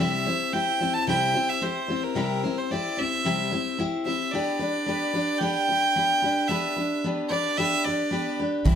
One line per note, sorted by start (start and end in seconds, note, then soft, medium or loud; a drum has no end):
0.00 0.26 C3 medium
0.00 0.26 G3 medium
0.00 0.26 C4 medium
0.00 0.26 E4 medium
0.00 0.26 G4 medium
0.00 0.24 C5 medium
0.00 0.54 E5 medium
0.26 0.52 C4 soft
0.26 0.53 E4 soft
0.26 0.54 G4 soft
0.26 0.53 C5 soft
0.53 0.80 C4 medium
0.53 0.81 E4 medium
0.53 0.80 G4 medium
0.53 0.79 C5 medium
0.53 0.95 G5 medium
0.80 1.07 C4 soft
0.80 1.08 E4 soft
0.80 1.08 G4 soft
0.80 1.08 C5 soft
0.93 1.07 A5 medium
1.07 1.34 C3 medium
1.07 1.35 G3 medium
1.07 1.35 C4 medium
1.07 1.35 E4 medium
1.07 1.34 G4 medium
1.07 1.33 C5 medium
1.07 1.50 G5 medium
1.34 1.60 C4 soft
1.34 1.62 E4 soft
1.34 1.62 G4 soft
1.34 1.61 C5 soft
1.49 1.64 E5 medium
1.62 1.89 C4 soft
1.62 1.89 E4 medium
1.62 1.89 G4 medium
1.62 2.04 C5 medium
1.62 1.87 C5 medium
1.88 2.15 C4 soft
1.88 2.16 E4 soft
1.88 2.16 G4 soft
1.88 2.16 C5 soft
2.03 2.59 A#4 medium
2.15 2.43 C3 medium
2.15 2.43 G3 medium
2.15 2.43 C4 medium
2.15 2.44 E4 medium
2.15 2.44 G4 medium
2.15 2.42 C5 medium
2.44 2.70 C4 soft
2.44 2.71 E4 soft
2.44 2.71 G4 soft
2.44 2.70 C5 soft
2.58 2.73 C5 medium
2.71 2.98 C4 medium
2.71 2.98 E4 medium
2.71 2.97 G4 medium
2.71 2.96 C5 medium
2.71 3.00 D5 medium
2.97 3.25 C4 soft
2.97 3.25 E4 soft
2.97 3.25 G4 soft
2.97 3.24 C5 soft
2.97 3.79 E5 medium
3.25 3.52 C3 medium
3.25 3.52 G3 medium
3.25 3.52 C4 medium
3.25 3.52 E4 medium
3.25 3.51 G4 medium
3.25 3.50 C5 medium
3.51 3.77 C4 soft
3.51 3.78 E4 soft
3.51 3.79 G4 soft
3.51 3.78 C5 soft
3.78 4.06 C4 medium
3.78 4.06 E4 medium
3.78 4.06 G4 medium
3.78 4.04 C5 medium
4.05 4.33 C4 soft
4.05 4.34 E4 soft
4.05 4.33 G4 soft
4.05 4.33 C5 soft
4.05 4.33 E5 medium
4.31 4.60 B3 medium
4.31 4.61 D4 medium
4.31 4.59 G4 medium
4.31 5.40 D5 medium
4.35 4.58 B4 medium
4.59 4.86 D4 soft
4.59 4.87 G4 soft
4.59 4.87 B4 soft
4.86 5.14 B3 medium
4.86 5.14 D4 medium
4.86 5.14 G4 medium
4.86 5.12 B4 medium
5.13 5.40 D4 soft
5.13 5.41 G4 soft
5.13 5.41 B4 medium
5.39 5.68 B3 medium
5.39 5.68 D4 medium
5.39 5.69 G4 medium
5.39 6.49 G5 loud
5.43 5.67 B4 medium
5.69 5.95 D4 soft
5.69 5.96 G4 soft
5.69 5.96 B4 soft
5.96 6.23 B3 medium
5.96 6.23 D4 medium
5.96 6.23 G4 medium
5.96 6.21 B4 medium
6.22 6.49 D4 soft
6.22 6.50 G4 soft
6.22 6.49 B4 medium
6.48 6.76 B3 medium
6.48 6.77 D4 medium
6.48 6.77 G4 medium
6.48 6.75 B4 medium
6.48 7.03 E5 medium
6.76 7.04 D4 soft
6.76 7.04 G4 soft
6.76 7.04 B4 soft
7.04 7.31 B3 medium
7.04 7.32 D4 medium
7.04 7.30 G4 medium
7.04 7.29 B4 medium
7.29 7.58 D4 soft
7.29 7.58 G4 soft
7.29 7.58 B4 soft
7.29 7.59 D5 medium
7.57 7.85 B3 medium
7.57 7.86 D4 medium
7.57 7.86 G4 medium
7.57 7.84 B4 medium
7.57 7.86 E5 medium
7.85 8.11 D4 soft
7.85 8.11 G4 soft
7.85 8.12 B4 soft
7.85 8.39 D5 medium
8.11 8.39 B3 soft
8.11 8.39 D4 soft
8.11 8.39 G4 medium
8.11 8.38 B4 medium
8.39 8.66 D4 soft
8.39 8.66 G4 soft
8.39 8.66 B4 soft
8.64 8.75 C2 medium
8.64 8.75 C3 medium
8.64 8.75 E3 medium
8.64 8.75 G3 medium
8.64 8.75 C4 medium
8.64 8.75 E4 medium
8.64 8.75 C5 medium
8.64 kick medium
8.64 open hi-hat medium